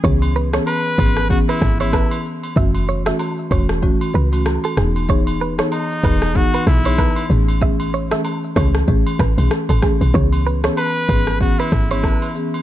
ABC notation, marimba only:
X:1
M:4/4
L:1/16
Q:"Swing 16ths" 1/4=95
K:C#m
V:1 name="Marimba"
[E,B,CG] z2 [E,B,CG] z2 [E,B,CG] z [E,B,CG]3 [E,B,CG] z4 | [E,A,CF] z2 [E,A,CF] z2 [E,A,CF] z [E,A,CF]3 [E,A,CF] z2 [E,B,DG] z | [E,B,DG] z2 [E,B,DG] z2 [E,B,DG] z [E,B,DG]3 [E,B,DG] z2 [E,A,CG] z | [E,A,CG] z2 [E,A,CG] z2 [E,A,CG] z [E,A,CG]3 [E,A,CG] z2 [E,A,CG] z |
[E,B,CG] z2 [E,B,CG] z2 [E,B,CG] z [E,B,CG]3 [E,B,CG] z2 [E,B,CG] z |]